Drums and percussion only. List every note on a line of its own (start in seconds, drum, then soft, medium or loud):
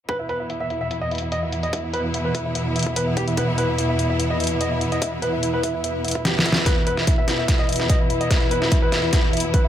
0.09 kick loud
0.09 closed hi-hat medium
0.29 closed hi-hat soft
0.50 closed hi-hat medium
0.70 closed hi-hat soft
0.91 closed hi-hat medium
1.11 closed hi-hat soft
1.15 closed hi-hat medium
1.18 closed hi-hat medium
1.32 closed hi-hat medium
1.52 closed hi-hat medium
1.63 closed hi-hat soft
1.73 kick loud
1.73 closed hi-hat medium
1.94 closed hi-hat soft
2.14 closed hi-hat medium
2.35 kick medium
2.35 closed hi-hat medium
2.55 closed hi-hat medium
2.76 closed hi-hat soft
2.79 closed hi-hat medium
2.83 kick medium
2.83 closed hi-hat medium
2.96 closed hi-hat medium
3.17 kick medium
3.17 closed hi-hat medium
3.28 closed hi-hat soft
3.37 kick loud
3.37 closed hi-hat medium
3.58 closed hi-hat soft
3.78 closed hi-hat medium
3.99 closed hi-hat soft
4.20 closed hi-hat medium
4.40 closed hi-hat soft
4.44 closed hi-hat medium
4.47 closed hi-hat medium
4.61 closed hi-hat medium
4.81 closed hi-hat soft
4.92 closed hi-hat soft
5.02 kick loud
5.02 closed hi-hat medium
5.22 closed hi-hat soft
5.43 closed hi-hat medium
5.63 kick medium
5.63 closed hi-hat soft
5.84 closed hi-hat medium
6.05 closed hi-hat soft
6.08 closed hi-hat medium
6.11 kick medium
6.11 closed hi-hat medium
6.25 snare medium
6.25 closed hi-hat medium
6.39 snare medium
6.46 kick loud
6.46 closed hi-hat soft
6.52 snare loud
6.52 closed hi-hat soft
6.66 kick medium
6.66 snare soft
6.66 closed hi-hat medium
6.87 closed hi-hat medium
6.97 snare soft
7.07 kick medium
7.07 closed hi-hat medium
7.28 snare medium
7.28 closed hi-hat medium
7.48 kick medium
7.48 snare soft
7.48 closed hi-hat medium
7.69 closed hi-hat soft
7.72 closed hi-hat medium
7.76 snare soft
7.76 closed hi-hat medium
7.89 kick medium
7.89 closed hi-hat medium
8.10 closed hi-hat medium
8.21 closed hi-hat soft
8.31 kick medium
8.31 snare medium
8.31 closed hi-hat medium
8.51 closed hi-hat medium
8.62 snare soft
8.72 kick medium
8.72 closed hi-hat medium
8.92 snare medium
8.92 closed hi-hat medium
9.13 kick medium
9.13 snare medium
9.13 closed hi-hat medium
9.33 closed hi-hat soft
9.37 closed hi-hat medium
9.40 closed hi-hat medium
9.54 kick loud
9.54 closed hi-hat medium